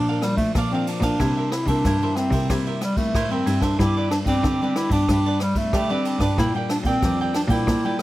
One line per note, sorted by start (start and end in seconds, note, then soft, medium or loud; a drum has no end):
0.00 0.46 A#2 loud
0.00 0.52 A#2 medium
0.00 0.18 F3 medium
0.00 0.18 A#3 medium
0.00 0.18 D4 medium
0.00 0.24 D4 loud
0.09 0.23 A#4 medium
0.09 0.23 D5 medium
0.09 0.23 F5 medium
0.21 0.54 F3 medium
0.21 0.36 G3 medium
0.21 0.66 A#3 medium
0.21 0.66 D4 medium
0.21 muted cavaquinho stroke soft
0.21 cross-stick medium
0.21 ride soft
0.37 0.52 A3 medium
0.37 kick medium
0.37 ride soft
0.55 0.97 A#2 loud
0.55 0.70 F3 medium
0.55 0.71 D4 medium
0.55 0.71 A#4 medium
0.55 0.71 D5 medium
0.55 0.72 F5 medium
0.55 kick medium
0.55 cross-stick medium
0.55 ride medium
0.71 1.15 F3 medium
0.71 1.15 A#3 medium
0.71 0.87 C4 medium
0.71 1.15 D4 medium
0.71 0.88 A#4 medium
0.71 0.88 D5 medium
0.71 0.88 F5 medium
0.87 1.03 D4 soft
0.87 1.03 A#4 soft
0.87 1.02 D5 soft
0.87 1.02 F5 soft
0.87 ride soft
1.00 1.16 A#2 medium
1.00 1.53 D4 medium
1.00 1.19 A#4 medium
1.00 1.19 D5 medium
1.00 1.18 F5 medium
1.00 kick medium
1.00 cross-stick medium
1.00 ride medium
1.19 1.82 C3 medium
1.19 1.61 C3 medium
1.19 1.51 G3 medium
1.19 1.51 A#3 medium
1.19 1.35 E4 medium
1.19 1.51 E4 medium
1.19 1.35 A#4 soft
1.19 1.36 C5 soft
1.19 1.36 E5 medium
1.19 kick medium
1.19 cross-stick medium
1.19 ride soft
1.37 1.53 A#4 medium
1.37 1.52 C5 medium
1.37 1.52 E5 medium
1.52 1.69 E4 loud
1.52 muted cavaquinho stroke soft
1.52 cross-stick medium
1.52 ride soft
1.66 1.81 C3 medium
1.66 1.95 G3 medium
1.66 1.96 A#3 medium
1.66 2.18 D4 loud
1.66 1.96 E4 medium
1.66 1.84 A#4 medium
1.66 1.84 C5 medium
1.66 1.83 E5 medium
1.66 kick medium
1.66 ride soft
1.85 2.26 G2 medium
1.85 2.47 G2 soft
1.85 2.01 E4 medium
1.85 2.01 A#4 medium
1.85 2.01 C5 medium
1.85 2.01 E5 medium
1.85 kick medium
1.85 cross-stick medium
1.85 ride medium
2.02 2.45 G3 medium
2.02 2.45 A#3 medium
2.02 2.46 E4 medium
2.02 2.33 A#4 medium
2.02 2.32 C5 medium
2.02 2.31 E5 medium
2.16 2.55 C4 medium
2.16 cross-stick medium
2.16 ride soft
2.30 2.46 C3 loud
2.30 2.49 A#4 medium
2.30 2.48 C5 medium
2.30 2.48 E5 medium
2.30 kick medium
2.30 ride soft
2.50 3.05 C3 loud
2.50 3.12 C3 medium
2.50 2.81 G3 medium
2.50 2.81 A#3 medium
2.50 2.65 E4 soft
2.50 2.81 E4 medium
2.50 2.65 A#4 soft
2.50 2.65 C5 medium
2.50 2.66 E5 medium
2.50 kick medium
2.50 cross-stick medium
2.50 ride soft
2.67 2.81 A#4 medium
2.67 2.80 C5 medium
2.67 2.81 E5 medium
2.81 2.99 G3 medium
2.81 muted cavaquinho stroke soft
2.81 cross-stick medium
2.81 ride soft
2.97 3.25 G3 medium
2.97 3.33 A3 medium
2.97 3.25 A#3 medium
2.97 3.26 E4 medium
2.97 kick medium
2.97 ride soft
3.15 3.76 G2 medium
3.15 3.44 A2 medium
3.15 3.30 E4 medium
3.15 3.30 A#4 medium
3.15 3.30 C5 medium
3.15 3.30 E5 medium
3.15 kick medium
3.15 cross-stick medium
3.15 ride soft
3.31 3.75 G3 medium
3.31 3.75 A#3 medium
3.31 3.64 C4 medium
3.31 3.75 E4 medium
3.31 3.46 A#4 medium
3.31 3.46 C5 medium
3.31 3.46 E5 medium
3.46 3.76 G2 medium
3.46 3.61 E4 soft
3.46 3.62 A#4 soft
3.46 3.62 C5 medium
3.46 3.61 E5 medium
3.46 ride soft
3.62 3.79 D4 medium
3.62 3.78 A#4 medium
3.62 3.78 C5 medium
3.62 3.78 E5 medium
3.62 kick medium
3.62 cross-stick medium
3.62 ride soft
3.79 4.21 G2 loud
3.79 4.41 G2 medium
3.79 4.23 G3 medium
3.79 4.23 B3 soft
3.79 3.95 D4 medium
3.79 4.23 D4 medium
3.79 4.10 E4 loud
3.79 3.95 G4 medium
3.79 3.95 B4 medium
3.79 3.96 D5 medium
3.79 kick medium
3.79 cross-stick medium
3.79 ride soft
3.97 4.12 G4 medium
3.97 4.11 B4 medium
3.97 4.11 D5 medium
4.11 4.18 D4 medium
4.11 muted cavaquinho stroke soft
4.11 cross-stick medium
4.11 ride soft
4.25 4.40 G2 medium
4.25 4.54 G3 medium
4.25 4.55 B3 medium
4.25 4.78 C4 loud
4.25 4.55 D4 medium
4.25 4.43 B4 medium
4.25 4.43 D5 medium
4.25 kick medium
4.25 ride soft
4.30 4.44 G4 medium
4.44 4.85 D3 medium
4.44 5.06 D3 soft
4.44 4.60 D4 medium
4.44 4.60 G4 medium
4.44 4.60 B4 medium
4.44 4.61 D5 medium
4.44 kick medium
4.44 cross-stick medium
4.44 ride soft
4.62 4.88 G3 medium
4.62 4.88 B3 medium
4.62 4.89 D4 medium
4.62 4.92 G4 medium
4.62 4.92 B4 medium
4.62 4.91 D5 medium
4.76 4.94 E4 loud
4.76 cross-stick medium
4.76 ride soft
4.89 5.05 G2 loud
4.89 5.04 G3 medium
4.89 5.04 B3 medium
4.89 5.41 D4 loud
4.89 5.04 D4 medium
4.89 5.08 G4 medium
4.89 5.08 B4 medium
4.89 5.07 D5 medium
4.89 kick medium
4.89 ride soft
5.08 5.64 G2 loud
5.08 5.71 G2 medium
5.08 5.52 G3 medium
5.08 5.52 B3 medium
5.08 5.53 D4 medium
5.08 5.25 D4 medium
5.08 5.25 G4 medium
5.08 5.25 B4 soft
5.08 5.25 D5 soft
5.08 kick medium
5.08 cross-stick medium
5.08 ride soft
5.26 5.41 G4 medium
5.26 5.41 B4 medium
5.26 5.41 D5 medium
5.40 5.59 G3 medium
5.40 muted cavaquinho stroke soft
5.40 cross-stick medium
5.40 ride soft
5.55 5.84 G3 medium
5.55 5.93 A3 medium
5.55 5.84 B3 medium
5.55 5.84 D4 medium
5.55 kick medium
5.55 ride soft
5.73 6.35 D3 medium
5.73 6.15 G3 medium
5.73 5.89 D4 medium
5.73 5.89 G4 medium
5.73 5.89 B4 medium
5.73 5.89 D5 medium
5.73 kick medium
5.73 cross-stick medium
5.73 ride medium
5.90 6.33 G3 medium
5.90 6.20 C4 medium
5.90 6.33 D4 medium
5.90 6.05 G4 medium
5.90 6.05 B4 medium
5.90 6.05 D5 medium
6.05 6.21 D4 soft
6.05 6.21 G4 soft
6.05 6.21 B4 soft
6.05 6.20 D5 soft
6.05 ride soft
6.18 6.34 G2 medium
6.18 6.37 D4 medium
6.18 6.37 B4 medium
6.18 6.36 D5 medium
6.18 kick medium
6.18 cross-stick medium
6.18 ride medium
6.23 6.37 G4 medium
6.37 6.99 A#2 medium
6.37 6.79 A#2 loud
6.37 6.49 G3 medium
6.37 6.49 D4 medium
6.37 6.53 D4 medium
6.37 6.53 E4 medium
6.37 6.49 F4 medium
6.37 6.54 A#4 medium
6.37 6.54 D5 soft
6.37 6.54 G5 medium
6.37 kick medium
6.37 cross-stick medium
6.37 ride soft
6.54 6.97 G3 medium
6.54 6.98 D4 medium
6.54 6.98 F4 medium
6.54 6.70 A#4 soft
6.54 6.70 D5 medium
6.54 6.70 G5 medium
6.70 6.78 D4 medium
6.70 muted cavaquinho stroke soft
6.70 cross-stick medium
6.70 ride medium
6.83 6.99 A#2 medium
6.83 7.32 C4 medium
6.83 7.02 A#4 medium
6.83 7.01 D5 medium
6.83 7.01 G5 medium
6.83 kick medium
6.83 ride soft
7.02 7.44 F2 medium
7.02 7.64 F3 medium
7.02 7.46 G3 soft
7.02 7.46 D4 medium
7.02 7.18 D4 medium
7.02 7.47 F4 medium
7.02 7.19 A#4 medium
7.02 7.19 D5 medium
7.02 7.19 G5 medium
7.02 kick medium
7.02 cross-stick medium
7.02 ride soft
7.21 7.50 A#4 medium
7.21 7.50 D5 medium
7.21 7.49 G5 medium
7.34 7.43 D4 medium
7.34 cross-stick medium
7.34 ride medium
7.48 7.63 A#2 loud
7.48 7.77 G3 medium
7.48 7.78 D4 medium
7.48 7.96 E4 medium
7.48 7.78 F4 medium
7.48 7.66 A#4 medium
7.48 7.66 D5 medium
7.48 7.66 G5 medium
7.48 kick medium
7.48 ride medium
7.67 8.02 A#2 medium
7.67 8.02 A#2 loud
7.67 7.83 D4 medium
7.67 7.83 A#4 medium
7.67 7.84 D5 medium
7.67 7.84 G5 medium
7.67 kick medium
7.67 cross-stick medium
7.67 ride soft
7.84 8.02 G3 medium
7.84 8.02 D4 medium
7.84 8.02 F4 medium
7.84 7.99 A#4 soft
7.84 8.00 D5 medium
7.84 7.99 G5 medium
7.99 cross-stick medium
7.99 ride soft